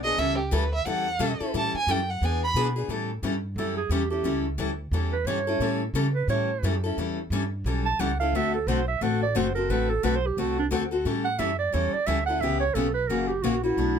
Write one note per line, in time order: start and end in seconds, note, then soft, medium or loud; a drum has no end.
0.00 0.17 B1 medium
0.00 0.20 D#5 loud
0.04 0.18 B3 soft
0.04 0.18 D4 soft
0.04 0.18 G#4 medium
0.18 0.51 C#2 medium
0.18 0.39 E3 medium
0.18 0.39 G3 medium
0.18 0.39 C#4 medium
0.18 0.39 E4 medium
0.18 0.39 A4 medium
0.18 0.38 E5 loud
0.38 0.55 G4 soft
0.51 0.85 D2 medium
0.51 0.63 E3 medium
0.51 0.63 G3 medium
0.51 0.63 C#4 medium
0.51 0.63 E4 loud
0.51 0.63 A4 medium
0.51 0.73 B4 medium
0.74 0.86 E5 medium
0.86 1.19 E2 medium
0.86 1.06 E3 medium
0.86 1.06 G3 medium
0.86 1.06 C#4 medium
0.86 1.07 E4 medium
0.86 1.07 A4 medium
0.86 1.38 F#5 medium
1.19 1.39 B2 medium
1.19 1.30 E3 medium
1.19 1.30 G3 medium
1.19 1.31 C#4 medium
1.19 1.31 E4 medium
1.19 1.31 A4 loud
1.40 1.54 C#4 soft
1.40 1.54 E4 soft
1.40 1.54 A4 medium
1.40 muted upright bass stroke soft
1.54 1.73 A2 medium
1.54 1.74 E3 medium
1.54 1.74 G3 medium
1.54 1.74 C#4 medium
1.54 1.75 E4 medium
1.54 1.75 A4 medium
1.54 1.74 A5 medium
1.74 1.92 G#5 loud
1.74 muted upright bass stroke soft
1.87 2.20 F#2 medium
1.87 1.99 E3 medium
1.87 1.99 G3 medium
1.87 1.99 C#4 medium
1.87 1.99 E4 medium
1.87 2.00 A4 medium
1.87 2.12 G5 medium
2.10 2.26 F#5 medium
2.22 2.54 E2 medium
2.22 2.42 E3 medium
2.22 2.42 B3 medium
2.22 2.43 D4 medium
2.22 2.43 G#4 medium
2.22 2.43 G#5 medium
2.44 2.51 B5 loud
2.54 2.88 B2 medium
2.54 2.66 E3 medium
2.54 2.66 B3 medium
2.54 2.67 D4 medium
2.54 2.67 G#4 loud
2.76 2.89 B3 soft
2.76 2.90 D4 medium
2.76 2.89 G#4 medium
2.88 3.22 A2 medium
2.88 3.09 E3 medium
2.88 3.10 G3 medium
2.88 3.10 C#4 medium
2.88 3.10 E4 medium
2.88 3.10 A4 medium
3.23 3.55 G2 medium
3.23 3.34 E3 medium
3.23 3.34 G3 medium
3.23 3.34 C#4 medium
3.23 3.34 E4 medium
3.23 3.35 A4 medium
3.56 3.89 F#2 medium
3.56 3.78 E3 medium
3.56 3.78 G3 medium
3.56 3.78 C#4 medium
3.56 3.78 E4 medium
3.56 3.76 A4 medium
3.56 3.78 A4 medium
3.77 3.93 G#4 medium
3.89 4.23 E2 medium
3.89 4.02 E3 medium
3.89 4.02 G3 medium
3.89 4.02 C#4 medium
3.89 4.02 E4 medium
3.89 4.10 G4 medium
3.89 4.02 A4 medium
4.10 4.24 C#4 soft
4.10 4.24 E4 soft
4.10 4.43 G4 medium
4.10 4.24 A4 medium
4.23 4.57 C#2 medium
4.23 4.45 E3 medium
4.23 4.45 G3 medium
4.23 4.45 C#4 medium
4.23 4.45 E4 medium
4.23 4.46 A4 medium
4.58 4.91 D2 medium
4.58 4.69 E3 medium
4.58 4.69 G3 medium
4.58 4.70 C#4 medium
4.58 4.70 E4 medium
4.58 4.70 A4 medium
4.91 5.24 E2 medium
4.91 5.13 E3 medium
4.91 5.13 G3 medium
4.91 5.14 C#4 medium
4.91 5.14 E4 medium
4.91 5.14 A4 medium
5.13 5.28 B4 medium
5.25 5.59 G2 medium
5.25 5.38 E3 medium
5.25 5.38 G3 medium
5.25 5.38 C#4 medium
5.25 5.38 E4 medium
5.25 5.38 A4 medium
5.25 5.81 C#5 medium
5.47 5.60 C#4 soft
5.47 5.61 E4 medium
5.47 5.61 A4 medium
5.60 5.93 A2 medium
5.60 5.81 E3 medium
5.60 5.81 G3 medium
5.60 5.81 C#4 medium
5.60 5.82 E4 medium
5.60 5.82 A4 medium
5.94 6.27 C#3 medium
5.94 6.06 E3 medium
5.94 6.06 G3 medium
5.94 6.06 C#4 medium
5.94 6.06 E4 medium
5.94 6.06 A4 medium
6.14 6.27 B4 medium
6.28 6.61 A2 medium
6.28 6.49 E3 medium
6.28 6.49 G3 medium
6.28 6.49 C#4 medium
6.28 6.49 E4 medium
6.28 6.50 A4 medium
6.28 6.80 C#5 medium
6.63 6.96 F#2 medium
6.63 6.74 E3 medium
6.63 6.74 G3 medium
6.63 6.74 C#4 medium
6.63 6.74 E4 medium
6.63 6.75 A4 medium
6.84 6.97 C#4 soft
6.84 6.98 E4 soft
6.84 6.97 A4 medium
6.97 7.30 E2 medium
6.97 7.18 E3 medium
6.97 7.18 G3 medium
6.97 7.18 C#4 medium
6.97 7.18 E4 medium
6.97 7.18 A4 medium
7.30 7.64 G2 medium
7.30 7.42 E3 medium
7.30 7.43 G3 medium
7.30 7.43 C#4 medium
7.30 7.43 E4 medium
7.30 7.43 A4 medium
7.64 7.98 B1 medium
7.64 7.86 E3 medium
7.64 7.86 G3 medium
7.64 7.86 C#4 medium
7.64 7.86 E4 medium
7.64 7.87 A4 medium
7.85 8.02 A5 loud
7.99 8.32 C#2 medium
7.99 8.10 E3 medium
7.99 8.10 G3 medium
7.99 8.10 C#4 medium
7.99 8.11 E4 medium
7.99 8.11 A4 medium
7.99 8.19 F#5 medium
8.20 8.34 C#4 soft
8.20 8.34 E4 medium
8.20 8.33 A4 medium
8.20 8.37 F5 medium
8.33 8.66 D2 medium
8.33 8.54 D3 medium
8.33 8.54 A3 medium
8.33 8.54 C4 medium
8.33 8.55 F#4 medium
8.33 8.55 A4 medium
8.33 8.53 E5 medium
8.54 8.69 A4 medium
8.67 9.00 B1 medium
8.67 8.78 D3 medium
8.67 8.78 A3 medium
8.67 8.78 C4 medium
8.67 8.79 F#4 medium
8.67 8.79 A4 medium
8.67 8.87 C5 medium
8.88 9.04 E5 medium
9.01 9.34 A1 medium
9.01 9.21 D3 medium
9.01 9.22 A3 medium
9.01 9.22 C4 medium
9.01 9.22 F#4 medium
9.01 9.22 A4 medium
9.01 9.22 F#5 medium
9.23 9.38 D5 medium
9.35 9.68 F#1 medium
9.35 9.46 D3 medium
9.35 9.46 A3 medium
9.35 9.46 C4 medium
9.35 9.46 F#4 loud
9.35 9.47 A4 medium
9.35 9.54 C5 medium
9.55 9.69 C4 soft
9.55 9.69 F#4 medium
9.55 9.69 A4 medium
9.55 9.72 A#4 medium
9.69 10.02 A1 medium
9.69 9.90 D3 medium
9.69 9.90 A3 medium
9.69 9.90 C4 medium
9.69 9.90 F#4 medium
9.69 9.90 A4 medium
9.69 9.91 B4 medium
9.90 10.06 A4 medium
10.03 10.36 B1 medium
10.03 10.14 D3 medium
10.03 10.14 A3 medium
10.03 10.14 C4 medium
10.03 10.14 F#4 medium
10.03 10.15 A4 medium
10.03 10.17 B4 medium
10.15 10.28 C5 medium
10.27 10.40 G4 medium
10.37 10.70 C2 medium
10.37 10.58 D3 medium
10.37 10.58 A3 medium
10.37 10.58 C4 medium
10.37 10.58 F#4 medium
10.37 10.59 A4 medium
10.59 10.67 D4 medium
10.71 11.04 D2 medium
10.71 10.82 D3 medium
10.71 10.82 A3 medium
10.71 10.82 C4 medium
10.71 10.82 F#4 medium
10.71 10.83 A4 loud
10.91 11.05 C4 soft
10.91 11.05 F#4 medium
10.91 11.05 A4 medium
11.05 11.38 A2 medium
11.05 11.25 E3 medium
11.05 11.26 G3 medium
11.05 11.26 C#4 medium
11.05 11.26 E4 medium
11.05 11.26 A4 medium
11.24 11.40 F#5 loud
11.39 11.72 F#2 medium
11.39 11.50 E3 medium
11.39 11.50 G3 medium
11.39 11.50 C#4 medium
11.39 11.50 E4 medium
11.39 11.50 A4 medium
11.39 11.58 E5 medium
11.59 11.75 D5 medium
11.73 11.93 E2 medium
11.73 11.93 E3 medium
11.73 11.94 G3 medium
11.73 11.94 C#4 medium
11.73 11.94 E4 medium
11.73 11.94 A4 medium
11.73 11.94 C#5 medium
11.93 12.08 D5 medium
11.93 muted upright bass stroke soft
12.06 12.40 D2 loud
12.06 12.18 E3 medium
12.06 12.18 G3 medium
12.06 12.18 C#4 medium
12.06 12.18 E4 medium
12.06 12.19 A4 medium
12.06 12.25 E5 medium
12.26 12.42 E4 soft
12.26 12.41 A4 medium
12.26 12.42 F#5 loud
12.30 12.42 C#4 soft
12.41 12.74 C#2 medium
12.41 12.62 C#3 medium
12.41 12.62 E3 medium
12.41 12.63 B3 medium
12.41 12.62 C#4 medium
12.41 12.63 G4 medium
12.41 12.59 E5 medium
12.60 12.76 C#5 loud
12.74 13.08 B1 medium
12.74 12.86 C#3 medium
12.74 12.86 E3 medium
12.74 12.86 B3 medium
12.74 12.87 C#4 medium
12.74 12.87 G4 medium
12.74 12.93 A4 medium
12.94 13.09 B4 loud
13.07 13.43 F#1 medium
13.07 13.30 C#3 medium
13.07 13.30 E3 medium
13.07 13.30 A#3 medium
13.07 13.30 C#4 medium
13.07 13.30 F#4 medium
13.07 13.29 A#4 medium
13.28 13.44 G4 medium
13.42 13.77 A#1 medium
13.42 13.54 C#3 medium
13.42 13.54 E3 medium
13.42 13.55 A#3 medium
13.42 13.55 C#4 medium
13.42 13.63 F#4 medium
13.42 13.55 F#4 medium
13.64 13.78 A#3 soft
13.64 13.78 C#4 medium
13.64 13.99 E4 medium
13.64 13.77 F#4 medium
13.77 13.99 B1 medium
13.77 13.98 B2 medium
13.77 13.98 F#3 medium
13.77 13.98 A3 medium
13.77 13.98 D4 medium
13.77 13.98 F#4 medium